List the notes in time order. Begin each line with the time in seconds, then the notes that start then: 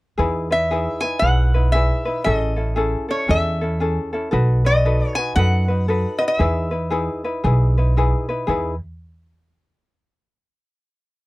0.18 E2 D#4 E4 G#4 B4
0.51 D#4 E4 B4 E5
0.71 D#4 E4 G#4 B4
1.01 D#4 E4 B4 G#5
1.19 B1 D#4 G#4 B4 F#5
1.24 E4
1.54 D#4 E4 B4
1.72 D#4 E4 G#4 B4 E5
2.05 D#4 E4 B4
2.24 A1 C#4 E4 G#4 A4 D#5
2.56 C#4 E4 A4
2.76 C#4 E4 G#4 A4
3.08 C#4 E4 A4 C#5
3.28 E2 C#4 E4 G#4 A4 E5
3.61 C#4 E4 A4
3.80 C#4 E4 G#4 A4
4.13 C#4 E4 A4
4.31 B1 D#4 F#4 A4 B4
4.65 D#4 F#4 B4 D#5
4.85 D#4 F#4 A4 B4
5.08 C#5
5.15 D#4 F#4 B4 G#5
5.36 F#2 D#4 F#4 A4 B4 F#5
5.68 D#4 F#4 B4
5.88 D#4 F#4 A4 B4
6.18 D#4 F#4 B4 D#5
6.28 E5
6.39 E2 D#4 E4 G#4 B4
6.71 D#4 E4 B4
6.90 D#4 E4 G#4 B4
7.24 D#4 E4 B4
7.44 B1 D#4 E4 G#4 B4
7.78 D#4 E4 B4
7.97 D#4 E4 G#4 B4
8.29 D#4 E4 B4
8.47 E2 D#4 E4 G#4 B4